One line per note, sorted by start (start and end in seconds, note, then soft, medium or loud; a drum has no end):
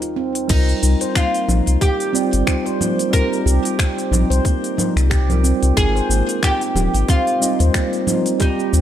0.00 0.45 D#2 medium
0.00 0.45 G3 medium
0.00 0.46 C4 medium
0.00 0.46 F4 medium
0.00 0.15 F4 medium
0.00 0.47 A#4 medium
0.00 open hi-hat soft
0.16 0.34 C4 medium
0.35 open hi-hat soft
0.48 0.74 C2 medium
0.48 2.10 G3 medium
0.48 2.11 C4 medium
0.48 1.16 D#4 medium
0.48 2.11 F4 medium
0.48 kick loud
0.48 open hi-hat medium
0.48 crash medium
0.48 shaker soft
0.52 2.12 A#4 medium
0.69 shaker soft
0.82 0.95 C2 medium
0.82 0.99 D#4 medium
0.82 shaker medium
1.01 1.15 C5 medium
1.01 open hi-hat soft
1.01 shaker soft
1.15 1.47 A#3 medium
1.15 1.81 F4 medium
1.15 finger snap loud
1.15 kick loud
1.15 open hi-hat medium
1.15 shaker soft
1.34 open hi-hat soft
1.34 shaker soft
1.48 1.61 A#1 medium
1.48 1.66 D#4 medium
1.48 low conga medium
1.48 shaker medium
1.67 1.77 C2 medium
1.67 open hi-hat soft
1.67 shaker soft
1.81 2.13 G4 loud
1.81 3.09 G4 medium
1.81 kick loud
1.81 open hi-hat medium
1.81 shaker soft
2.00 open hi-hat soft
2.00 shaker soft
2.12 2.43 G3 loud
2.12 2.31 C4 medium
2.12 2.43 C4 medium
2.12 2.44 F4 medium
2.12 2.44 D5 loud
2.12 shaker medium
2.33 2.43 G1 medium
2.33 open hi-hat soft
2.33 shaker soft
2.46 3.09 G3 medium
2.46 3.09 C4 medium
2.46 2.64 D#4 medium
2.46 3.09 F4 medium
2.46 3.10 C5 loud
2.46 finger snap loud
2.46 kick loud
2.46 open hi-hat medium
2.46 shaker soft
2.66 2.79 C5 loud
2.66 open hi-hat soft
2.66 shaker soft
2.80 3.12 A#3 medium
2.80 low conga medium
2.80 shaker medium
2.99 open hi-hat soft
2.99 shaker soft
3.11 4.91 G3 medium
3.11 4.91 C4 medium
3.11 3.31 D#4 medium
3.11 4.92 F4 medium
3.11 5.40 A#4 loud
3.11 kick loud
3.11 open hi-hat medium
3.11 shaker soft
3.15 4.93 G4 medium
3.33 shaker soft
3.46 3.59 C2 loud
3.46 3.77 G4 loud
3.46 shaker medium
3.65 open hi-hat soft
3.65 shaker soft
3.79 3.97 C4 loud
3.79 finger snap loud
3.79 kick loud
3.79 open hi-hat medium
3.79 shaker soft
3.98 open hi-hat soft
3.98 shaker soft
4.11 4.25 A#1 medium
4.11 4.28 D#4 medium
4.11 low conga medium
4.11 shaker medium
4.30 4.40 C2 medium
4.30 4.44 C5 loud
4.30 open hi-hat soft
4.30 shaker soft
4.44 4.76 A#3 medium
4.44 kick loud
4.44 open hi-hat medium
4.44 shaker soft
4.64 open hi-hat soft
4.64 shaker soft
4.77 4.95 D#4 medium
4.77 low conga medium
4.77 shaker medium
4.96 5.53 C2 medium
4.96 finger snap soft
4.96 open hi-hat soft
4.96 shaker soft
5.10 5.42 G4 loud
5.10 finger snap loud
5.10 kick loud
5.10 open hi-hat medium
5.10 shaker soft
5.29 5.73 G3 medium
5.29 5.73 C4 medium
5.29 5.73 F4 medium
5.29 5.74 A#4 loud
5.29 open hi-hat soft
5.29 low conga medium
5.29 shaker soft
5.44 5.61 C4 loud
5.44 shaker medium
5.63 5.72 C2 loud
5.63 open hi-hat soft
5.63 shaker soft
5.74 6.01 G#1 medium
5.74 7.37 G#3 medium
5.74 7.38 C4 medium
5.74 7.38 F4 medium
5.74 6.44 G#4 loud
5.74 kick loud
5.74 open hi-hat medium
5.74 shaker soft
5.78 7.39 A#4 loud
5.95 6.09 C5 loud
5.95 shaker soft
6.09 6.22 G#1 medium
6.09 6.41 A#3 medium
6.09 shaker medium
6.29 open hi-hat soft
6.29 shaker soft
6.43 6.60 D#4 medium
6.43 7.05 G4 loud
6.43 finger snap loud
6.43 kick loud
6.43 open hi-hat medium
6.43 shaker soft
6.61 open hi-hat soft
6.61 shaker soft
6.75 6.88 D#1 loud
6.75 7.07 G4 loud
6.75 low conga medium
6.75 shaker medium
6.94 7.04 G#1 medium
6.94 open hi-hat soft
6.94 shaker soft
7.08 7.26 C4 loud
7.08 8.45 F4 loud
7.08 kick loud
7.08 open hi-hat medium
7.08 shaker soft
7.27 open hi-hat soft
7.27 shaker soft
7.40 7.70 G3 medium
7.40 7.71 C4 medium
7.40 7.58 D#4 medium
7.40 7.71 F4 medium
7.40 7.71 D#5 loud
7.40 shaker medium
7.60 7.70 D#2 medium
7.60 7.74 C5 medium
7.60 open hi-hat soft
7.60 shaker soft
7.73 8.36 G3 medium
7.73 8.06 A#3 medium
7.73 8.37 C4 medium
7.73 8.37 F4 medium
7.73 8.37 C5 loud
7.73 finger snap loud
7.73 kick loud
7.73 open hi-hat medium
7.73 shaker soft
7.93 open hi-hat soft
7.93 shaker soft
8.07 8.25 D#4 medium
8.07 low conga medium
8.07 shaker medium
8.26 open hi-hat soft
8.26 shaker soft
8.38 8.81 G3 medium
8.38 8.81 C4 medium
8.38 8.81 D#4 medium
8.38 8.81 F4 medium
8.38 8.72 G4 medium
8.38 8.81 G4 loud
8.38 kick loud
8.38 open hi-hat soft
8.38 shaker soft
8.60 shaker soft
8.73 8.81 D#2 medium
8.73 8.81 C4 loud
8.73 shaker medium